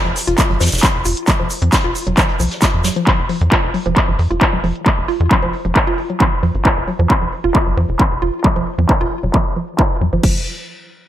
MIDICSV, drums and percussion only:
0, 0, Header, 1, 2, 480
1, 0, Start_track
1, 0, Tempo, 447761
1, 1371, Time_signature, 4, 2, 24, 8
1, 11881, End_track
2, 0, Start_track
2, 0, Title_t, "Drums"
2, 56, Note_on_c, 9, 42, 42
2, 163, Note_off_c, 9, 42, 0
2, 170, Note_on_c, 9, 46, 99
2, 177, Note_on_c, 9, 82, 67
2, 178, Note_on_c, 9, 38, 45
2, 278, Note_off_c, 9, 46, 0
2, 285, Note_off_c, 9, 38, 0
2, 285, Note_off_c, 9, 82, 0
2, 296, Note_on_c, 9, 42, 67
2, 308, Note_off_c, 9, 42, 0
2, 308, Note_on_c, 9, 42, 44
2, 410, Note_off_c, 9, 42, 0
2, 410, Note_on_c, 9, 36, 120
2, 410, Note_on_c, 9, 39, 115
2, 410, Note_on_c, 9, 42, 69
2, 410, Note_on_c, 9, 82, 96
2, 517, Note_off_c, 9, 82, 0
2, 518, Note_off_c, 9, 36, 0
2, 518, Note_off_c, 9, 39, 0
2, 518, Note_off_c, 9, 42, 0
2, 540, Note_on_c, 9, 42, 43
2, 647, Note_off_c, 9, 42, 0
2, 649, Note_on_c, 9, 82, 66
2, 650, Note_on_c, 9, 46, 107
2, 652, Note_on_c, 9, 38, 89
2, 707, Note_off_c, 9, 82, 0
2, 707, Note_on_c, 9, 82, 62
2, 711, Note_off_c, 9, 38, 0
2, 711, Note_on_c, 9, 38, 81
2, 758, Note_off_c, 9, 46, 0
2, 774, Note_off_c, 9, 82, 0
2, 774, Note_on_c, 9, 82, 71
2, 775, Note_on_c, 9, 42, 68
2, 780, Note_off_c, 9, 38, 0
2, 780, Note_on_c, 9, 38, 94
2, 834, Note_off_c, 9, 82, 0
2, 834, Note_on_c, 9, 82, 73
2, 835, Note_off_c, 9, 38, 0
2, 835, Note_on_c, 9, 38, 82
2, 882, Note_off_c, 9, 42, 0
2, 884, Note_off_c, 9, 38, 0
2, 884, Note_on_c, 9, 38, 119
2, 890, Note_on_c, 9, 36, 126
2, 890, Note_on_c, 9, 39, 118
2, 890, Note_on_c, 9, 42, 68
2, 941, Note_off_c, 9, 82, 0
2, 991, Note_off_c, 9, 38, 0
2, 997, Note_off_c, 9, 36, 0
2, 998, Note_off_c, 9, 39, 0
2, 998, Note_off_c, 9, 42, 0
2, 1127, Note_on_c, 9, 82, 70
2, 1131, Note_on_c, 9, 46, 96
2, 1234, Note_off_c, 9, 82, 0
2, 1238, Note_off_c, 9, 46, 0
2, 1256, Note_on_c, 9, 42, 68
2, 1364, Note_off_c, 9, 42, 0
2, 1364, Note_on_c, 9, 82, 84
2, 1371, Note_on_c, 9, 36, 127
2, 1371, Note_on_c, 9, 39, 113
2, 1371, Note_on_c, 9, 42, 65
2, 1471, Note_off_c, 9, 82, 0
2, 1478, Note_off_c, 9, 36, 0
2, 1479, Note_off_c, 9, 39, 0
2, 1479, Note_off_c, 9, 42, 0
2, 1610, Note_on_c, 9, 82, 65
2, 1612, Note_on_c, 9, 46, 107
2, 1717, Note_off_c, 9, 82, 0
2, 1719, Note_off_c, 9, 46, 0
2, 1736, Note_on_c, 9, 42, 65
2, 1843, Note_off_c, 9, 42, 0
2, 1849, Note_on_c, 9, 82, 91
2, 1851, Note_on_c, 9, 36, 124
2, 1851, Note_on_c, 9, 39, 112
2, 1851, Note_on_c, 9, 42, 69
2, 1856, Note_on_c, 9, 38, 123
2, 1956, Note_off_c, 9, 82, 0
2, 1958, Note_off_c, 9, 36, 0
2, 1958, Note_off_c, 9, 39, 0
2, 1958, Note_off_c, 9, 42, 0
2, 1963, Note_off_c, 9, 38, 0
2, 2092, Note_on_c, 9, 46, 97
2, 2097, Note_on_c, 9, 82, 63
2, 2199, Note_off_c, 9, 46, 0
2, 2204, Note_off_c, 9, 82, 0
2, 2217, Note_on_c, 9, 42, 66
2, 2324, Note_off_c, 9, 42, 0
2, 2331, Note_on_c, 9, 36, 122
2, 2332, Note_on_c, 9, 39, 115
2, 2332, Note_on_c, 9, 42, 66
2, 2335, Note_on_c, 9, 82, 80
2, 2438, Note_off_c, 9, 36, 0
2, 2439, Note_off_c, 9, 39, 0
2, 2439, Note_off_c, 9, 42, 0
2, 2442, Note_off_c, 9, 82, 0
2, 2451, Note_on_c, 9, 42, 44
2, 2558, Note_off_c, 9, 42, 0
2, 2571, Note_on_c, 9, 82, 63
2, 2572, Note_on_c, 9, 46, 106
2, 2678, Note_off_c, 9, 82, 0
2, 2679, Note_off_c, 9, 46, 0
2, 2691, Note_on_c, 9, 38, 62
2, 2696, Note_on_c, 9, 42, 64
2, 2799, Note_off_c, 9, 38, 0
2, 2803, Note_off_c, 9, 42, 0
2, 2806, Note_on_c, 9, 82, 89
2, 2811, Note_on_c, 9, 36, 126
2, 2812, Note_on_c, 9, 39, 112
2, 2812, Note_on_c, 9, 42, 66
2, 2819, Note_on_c, 9, 38, 122
2, 2913, Note_off_c, 9, 82, 0
2, 2918, Note_off_c, 9, 36, 0
2, 2919, Note_off_c, 9, 39, 0
2, 2919, Note_off_c, 9, 42, 0
2, 2926, Note_off_c, 9, 38, 0
2, 3045, Note_on_c, 9, 38, 105
2, 3050, Note_on_c, 9, 82, 73
2, 3051, Note_on_c, 9, 46, 93
2, 3153, Note_off_c, 9, 38, 0
2, 3158, Note_off_c, 9, 46, 0
2, 3158, Note_off_c, 9, 82, 0
2, 3177, Note_on_c, 9, 42, 65
2, 3284, Note_off_c, 9, 42, 0
2, 3291, Note_on_c, 9, 36, 126
2, 3291, Note_on_c, 9, 39, 114
2, 3291, Note_on_c, 9, 42, 64
2, 3398, Note_off_c, 9, 39, 0
2, 3398, Note_off_c, 9, 42, 0
2, 3399, Note_off_c, 9, 36, 0
2, 3530, Note_on_c, 9, 46, 106
2, 3637, Note_off_c, 9, 46, 0
2, 3657, Note_on_c, 9, 42, 62
2, 3764, Note_off_c, 9, 42, 0
2, 3771, Note_on_c, 9, 39, 115
2, 3771, Note_on_c, 9, 42, 64
2, 3772, Note_on_c, 9, 36, 118
2, 3878, Note_off_c, 9, 39, 0
2, 3878, Note_off_c, 9, 42, 0
2, 3879, Note_off_c, 9, 36, 0
2, 4011, Note_on_c, 9, 46, 94
2, 4118, Note_off_c, 9, 46, 0
2, 4136, Note_on_c, 9, 42, 61
2, 4243, Note_off_c, 9, 42, 0
2, 4251, Note_on_c, 9, 36, 118
2, 4251, Note_on_c, 9, 39, 120
2, 4251, Note_on_c, 9, 42, 66
2, 4358, Note_off_c, 9, 39, 0
2, 4358, Note_off_c, 9, 42, 0
2, 4359, Note_off_c, 9, 36, 0
2, 4491, Note_on_c, 9, 46, 106
2, 4598, Note_off_c, 9, 46, 0
2, 4618, Note_on_c, 9, 42, 62
2, 4725, Note_off_c, 9, 42, 0
2, 4731, Note_on_c, 9, 36, 114
2, 4732, Note_on_c, 9, 39, 121
2, 4732, Note_on_c, 9, 42, 64
2, 4838, Note_off_c, 9, 36, 0
2, 4839, Note_off_c, 9, 39, 0
2, 4839, Note_off_c, 9, 42, 0
2, 4972, Note_on_c, 9, 46, 95
2, 5079, Note_off_c, 9, 46, 0
2, 5098, Note_on_c, 9, 42, 62
2, 5205, Note_off_c, 9, 42, 0
2, 5212, Note_on_c, 9, 36, 115
2, 5212, Note_on_c, 9, 39, 121
2, 5212, Note_on_c, 9, 42, 64
2, 5319, Note_off_c, 9, 36, 0
2, 5320, Note_off_c, 9, 39, 0
2, 5320, Note_off_c, 9, 42, 0
2, 5453, Note_on_c, 9, 46, 99
2, 5560, Note_off_c, 9, 46, 0
2, 5577, Note_on_c, 9, 42, 63
2, 5684, Note_off_c, 9, 42, 0
2, 5691, Note_on_c, 9, 36, 115
2, 5693, Note_on_c, 9, 39, 123
2, 5799, Note_off_c, 9, 36, 0
2, 5800, Note_off_c, 9, 39, 0
2, 5931, Note_on_c, 9, 46, 91
2, 6039, Note_off_c, 9, 46, 0
2, 6056, Note_on_c, 9, 42, 62
2, 6164, Note_off_c, 9, 42, 0
2, 6171, Note_on_c, 9, 36, 111
2, 6171, Note_on_c, 9, 39, 123
2, 6278, Note_off_c, 9, 36, 0
2, 6278, Note_off_c, 9, 39, 0
2, 6411, Note_on_c, 9, 46, 100
2, 6518, Note_off_c, 9, 46, 0
2, 6536, Note_on_c, 9, 42, 64
2, 6643, Note_off_c, 9, 42, 0
2, 6651, Note_on_c, 9, 36, 114
2, 6652, Note_on_c, 9, 39, 120
2, 6758, Note_off_c, 9, 36, 0
2, 6759, Note_off_c, 9, 39, 0
2, 6892, Note_on_c, 9, 46, 93
2, 6999, Note_off_c, 9, 46, 0
2, 7018, Note_on_c, 9, 42, 63
2, 7125, Note_off_c, 9, 42, 0
2, 7131, Note_on_c, 9, 36, 115
2, 7132, Note_on_c, 9, 39, 124
2, 7238, Note_off_c, 9, 36, 0
2, 7239, Note_off_c, 9, 39, 0
2, 7371, Note_on_c, 9, 46, 100
2, 7478, Note_off_c, 9, 46, 0
2, 7496, Note_on_c, 9, 42, 66
2, 7603, Note_off_c, 9, 42, 0
2, 7611, Note_on_c, 9, 36, 116
2, 7611, Note_on_c, 9, 39, 127
2, 7718, Note_off_c, 9, 36, 0
2, 7719, Note_off_c, 9, 39, 0
2, 7851, Note_on_c, 9, 46, 92
2, 7958, Note_off_c, 9, 46, 0
2, 7976, Note_on_c, 9, 42, 66
2, 8084, Note_off_c, 9, 42, 0
2, 8091, Note_on_c, 9, 36, 114
2, 8091, Note_on_c, 9, 39, 123
2, 8198, Note_off_c, 9, 36, 0
2, 8199, Note_off_c, 9, 39, 0
2, 8332, Note_on_c, 9, 46, 99
2, 8439, Note_off_c, 9, 46, 0
2, 8457, Note_on_c, 9, 42, 66
2, 8564, Note_off_c, 9, 42, 0
2, 8571, Note_on_c, 9, 36, 113
2, 8571, Note_on_c, 9, 39, 125
2, 8678, Note_off_c, 9, 36, 0
2, 8679, Note_off_c, 9, 39, 0
2, 8811, Note_on_c, 9, 46, 89
2, 8918, Note_off_c, 9, 46, 0
2, 8936, Note_on_c, 9, 42, 65
2, 9044, Note_off_c, 9, 42, 0
2, 9051, Note_on_c, 9, 36, 117
2, 9052, Note_on_c, 9, 39, 123
2, 9159, Note_off_c, 9, 36, 0
2, 9159, Note_off_c, 9, 39, 0
2, 9291, Note_on_c, 9, 46, 104
2, 9399, Note_off_c, 9, 46, 0
2, 9417, Note_on_c, 9, 42, 69
2, 9524, Note_off_c, 9, 42, 0
2, 9531, Note_on_c, 9, 36, 118
2, 9532, Note_on_c, 9, 39, 127
2, 9639, Note_off_c, 9, 36, 0
2, 9639, Note_off_c, 9, 39, 0
2, 9771, Note_on_c, 9, 46, 90
2, 9879, Note_off_c, 9, 46, 0
2, 9897, Note_on_c, 9, 42, 67
2, 10004, Note_off_c, 9, 42, 0
2, 10012, Note_on_c, 9, 36, 115
2, 10012, Note_on_c, 9, 39, 127
2, 10119, Note_off_c, 9, 36, 0
2, 10119, Note_off_c, 9, 39, 0
2, 10251, Note_on_c, 9, 46, 101
2, 10359, Note_off_c, 9, 46, 0
2, 10377, Note_on_c, 9, 42, 69
2, 10485, Note_off_c, 9, 42, 0
2, 10492, Note_on_c, 9, 36, 114
2, 10493, Note_on_c, 9, 39, 127
2, 10599, Note_off_c, 9, 36, 0
2, 10600, Note_off_c, 9, 39, 0
2, 10732, Note_on_c, 9, 46, 90
2, 10839, Note_off_c, 9, 46, 0
2, 10857, Note_on_c, 9, 42, 67
2, 10964, Note_off_c, 9, 42, 0
2, 10971, Note_on_c, 9, 49, 88
2, 10972, Note_on_c, 9, 36, 120
2, 11079, Note_off_c, 9, 36, 0
2, 11079, Note_off_c, 9, 49, 0
2, 11881, End_track
0, 0, End_of_file